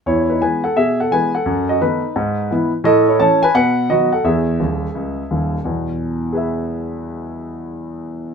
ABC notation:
X:1
M:4/4
L:1/8
Q:"Swing" 1/4=172
K:E
V:1 name="Grand piano"
[Ec] [DB] [Bg] [Af] [Ge] [Af] [Bg] [Af]- | [Af] [Fd] [DB]4- [DB] z | [Ad] [Ec] [ca] [Bg] [Bf]2 [Fd] [Af] | [Ge]6- [Ge] z |
z4 [GBe]4- | [GBe]8 |]
V:2 name="Grand piano" clef=bass
E,,2 [E,G,B,]2 B,,2 [E,G,B,]2 | F,,2 [D,A,B,]2 G,,2 [E,B,E]2 | A,,2 [E,A,C]2 B,,2 [D,F,B,]2 | E,,2 [D,,,D,,]2 C,,2 [D,,,D,,]2 |
[E,,B,,]8- | [E,,B,,]8 |]